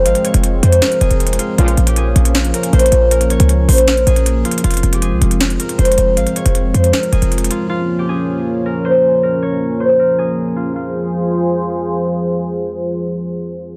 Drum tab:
HH |x--x--x--x--x-----x--x--x--x--x--x--x-x-x-x-----|x--x--x--x--x-----x--x--x--x--x--x--x-x-x-x-----|x--x--x--x--x-----o--x--x--x--x--x--x-----x-x-x-|x-xxx-x--x--x-----x--x--x--x--x--x--x-x-x-x-----|
SD |------------------------o-----------------------|------------------------o-----------------------|------------------------o-----------------------|------------------------o-----------------------|

HH |x--x--x--x--x-----x--x--x--x--x--x--x-x-x-x-----|------------------------------------------------|------------------------------------------------|------------------------------------------------|
SD |------------------------o-----------------------|------------------------------------------------|------------------------------------------------|------------------------------------------------|

HH |------------------------------------------------|
SD |------------------------------------------------|